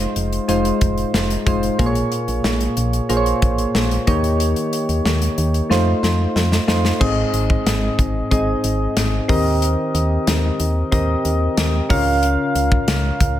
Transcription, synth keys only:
Already playing: G#3 D#4 F4 C5
0.48 G#3 D#4 F4 C5
1.46 G#3 D#4 F4 C5
1.79 A#2 A#3 F4 G#4 C5
1.86 C#5
3.09 A#3 F4 G#4 C5
3.17 C#5
4.07 D#3 A#3 D#4 G4 C#5
5.70 A3 D#4 F4 C5
6.67 A3 D#4 F4 C5
7.00 G#2 C4 D#4 G#4 D#5
8.31 C4 D#4 G#4 D#5
9.28 D#3 C4 G4 A#4 D#5
10.92 C4 G4 A#4 D#5
11.89 C#3 C#4 F4 A#4 F5

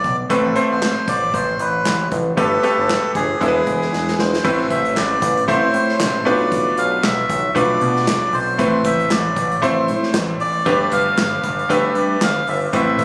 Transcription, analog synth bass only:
0.04 B1
0.30 A1
0.71 A1
1.08 A1
1.34 A1
1.60 A1
1.86 A1
2.12 A1
2.37 G1
2.78 G1
3.15 G1
3.41 E1
3.67 E1
3.93 E1
4.19 E1
4.45 A1
4.70 A1
4.96 A1
5.22 A1
5.48 A1
5.74 A2
6.00 A1
6.26 B1
6.78 B1
7.03 B1
7.29 B1
7.56 B1
7.81 B2
8.08 B1
8.33 B1
8.59 A1
8.85 A1
9.11 A1
9.36 A1
9.62 A1
9.89 A2
10.15 A1
10.41 A1
10.66 G1
10.92 G1
11.19 G1
11.44 G1
11.70 G1
11.96 G2
12.22 G1
12.48 G1
12.73 A1
12.99 A1

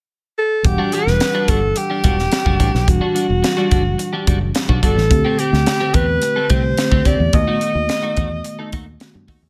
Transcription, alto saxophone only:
0.38 A4
0.65 G4
0.94 B4
1.50 A4
1.77 G4
2.89 F#4
4.83 A4
5.39 G4
5.95 B4
6.50 C5
7.06 D5
7.35 D#5

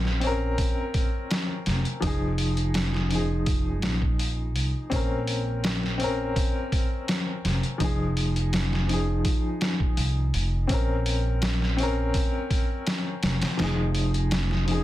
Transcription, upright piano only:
Already playing: C4 C#4 A#4
0.20 C4 C#4
0.27 A#4
2.00 F3 D#4
2.07 G#4
3.09 F3 D#4
3.15 G#4
4.90 C4 C#4
4.96 A#4
5.98 C4 C#4
6.04 A#4
7.78 F3 D#4
7.84 G#4
8.86 F3 D#4
8.93 G#4
10.67 C4 C#4
10.74 A#4
11.77 C4 C#4
11.83 A#4
13.57 F3 D#4
13.64 G#4
14.65 F3 D#4
14.71 G#4

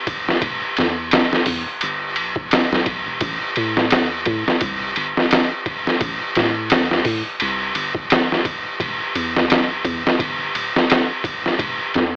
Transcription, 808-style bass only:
0.43 E1
0.78 E2
1.13 B1
1.47 E2
1.83 G1
2.18 B1
2.72 B1
3.07 E1
3.22 A1
3.57 A2
3.92 E2
4.26 A2
4.61 C2
4.96 G1
6.01 A1
6.36 A2
6.71 E2
7.06 A2
7.42 C2
7.75 G1
8.80 E1
9.15 E2
9.50 B1
9.85 E2
10.20 G1
10.55 D1
11.60 E1
11.95 E2

